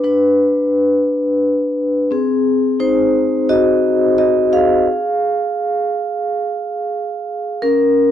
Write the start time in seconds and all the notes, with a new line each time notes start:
Already playing: D4 B4
0.04 D4 B4
2.11 C4 G#4
2.80 D#4 C5
3.49 F#4 D#5
4.18 F#4 D#5
4.53 G#4 F5
7.62 C#4 A#4